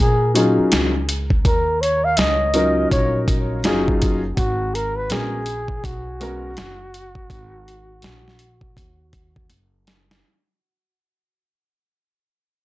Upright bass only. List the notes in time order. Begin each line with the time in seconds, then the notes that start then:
0.00 A#2
0.59 muted upright bass stroke
0.72 C#2
1.45 D#2
2.18 C#2
2.92 A#1
3.64 F#1
4.38 G#1
5.10 A#1
5.84 B1
6.57 F#1
7.30 G#1
8.03 A#1
8.77 D#2
9.49 F#1